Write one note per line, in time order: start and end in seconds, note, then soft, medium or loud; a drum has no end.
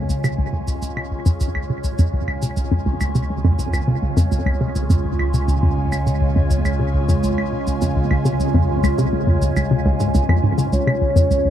0.00 1.38 C#2 medium
0.00 11.50 C#3 medium
0.00 11.50 G#3 medium
0.00 11.50 F4 medium
0.00 11.50 C#5 medium
0.00 11.50 G#5 medium
0.09 0.15 C#2 medium
0.09 shaker medium
0.24 0.34 C3 medium
0.24 claves soft
0.24 shaker soft
0.38 0.52 C#2 medium
0.53 0.63 F2 medium
0.68 0.73 C#2 medium
0.68 shaker medium
0.82 0.88 C#2 medium
0.82 shaker soft
0.97 1.06 C3 medium
0.97 claves soft
1.12 1.25 C#2 medium
1.26 1.36 F2 medium
1.26 shaker medium
1.40 10.70 C#2 medium
1.40 1.46 C#2 medium
1.40 shaker soft
1.55 1.61 C#2 medium
1.55 claves soft
1.70 1.79 C3 medium
1.84 1.98 C#2 medium
1.84 shaker medium
1.99 2.08 F2 medium
1.99 shaker soft
2.14 2.19 C#2 medium
2.28 2.34 C#2 medium
2.28 claves soft
2.42 2.52 C3 medium
2.42 shaker medium
2.57 2.71 C#2 medium
2.57 shaker soft
2.72 2.81 F2 medium
2.86 2.92 C#2 medium
3.01 3.07 C#2 medium
3.01 claves soft
3.01 shaker medium
3.15 3.25 C3 medium
3.15 shaker soft
3.30 3.44 C#2 medium
3.45 3.54 F2 loud
3.59 3.65 C#2 medium
3.59 shaker medium
3.73 3.79 C#2 medium
3.73 claves soft
3.73 shaker soft
3.88 3.97 C3 medium
4.02 4.16 C#2 medium
4.17 4.27 F2 medium
4.17 shaker medium
4.32 4.38 C#2 medium
4.32 shaker soft
4.46 4.52 C#2 medium
4.46 claves soft
4.61 4.70 C3 medium
4.76 4.90 C#2 medium
4.76 shaker medium
4.90 5.00 F2 loud
4.90 shaker soft
5.05 5.10 C#2 medium
5.19 5.25 C#2 medium
5.19 claves soft
5.34 5.43 C3 medium
5.34 shaker medium
5.48 5.62 C#2 medium
5.48 shaker soft
5.63 5.72 F2 medium
5.77 5.83 C#2 medium
5.92 5.98 C#2 medium
5.92 claves soft
5.92 shaker medium
6.07 6.16 C3 medium
6.07 shaker soft
6.21 6.35 C#2 medium
6.36 6.45 F2 loud
6.50 6.56 C#2 medium
6.50 shaker medium
6.65 6.71 C#2 medium
6.65 claves soft
6.65 shaker soft
6.80 6.89 C3 medium
6.94 7.08 C#2 medium
7.09 7.18 F2 loud
7.09 shaker medium
7.23 7.29 C#2 medium
7.23 shaker soft
7.38 7.44 C#2 medium
7.38 claves soft
7.52 7.62 C3 medium
7.67 7.81 C#2 medium
7.67 shaker medium
7.82 7.91 F2 medium
7.82 shaker soft
7.96 8.02 C#2 medium
8.11 8.16 C#2 medium
8.11 claves soft
8.25 8.35 C3 medium
8.25 shaker medium
8.40 8.54 C#2 medium
8.40 shaker soft
8.54 8.64 F2 loud
8.69 8.75 C#2 medium
8.84 8.89 C#2 medium
8.84 claves soft
8.84 shaker medium
8.98 9.08 C3 medium
8.98 shaker soft
9.13 9.27 C#2 medium
9.27 9.37 F2 medium
9.42 9.47 C#2 medium
9.42 shaker medium
9.57 9.62 C#2 medium
9.57 claves soft
9.57 shaker soft
9.71 9.80 C3 medium
9.86 9.91 C#2 loud
10.00 10.06 G#2 loud
10.00 shaker medium
10.15 10.20 C#2 loud
10.15 shaker soft
10.29 10.39 F2 loud
10.29 claves soft
10.43 10.57 G#2 medium
10.58 10.64 C#3 medium
10.58 shaker medium
10.73 10.78 C#2 medium
10.73 11.50 C#2 medium
10.73 11.50 C#5 loud
10.73 shaker soft
10.87 10.97 C3 medium
10.87 claves soft
11.02 11.16 C#2 medium
11.16 11.26 F2 loud
11.16 shaker medium
11.31 11.40 C#2 medium
11.31 shaker soft
11.45 11.50 C#2 medium